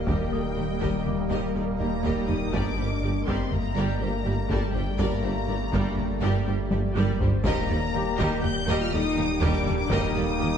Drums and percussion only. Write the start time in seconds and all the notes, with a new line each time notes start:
0.07 taiko
0.81 taiko
1.06 taiko low-mid
2.04 taiko
2.29 taiko low-mid
2.53 taiko
3.28 taiko
3.52 taiko low-mid
4.50 taiko
4.75 taiko low-mid
4.99 taiko
5.73 taiko
5.97 taiko low-mid
6.71 taiko high
6.96 taiko high
7.20 taiko low
7.44 taiko
8.19 taiko
8.44 taiko low-mid
9.42 taiko
9.67 taiko low-mid
9.91 taiko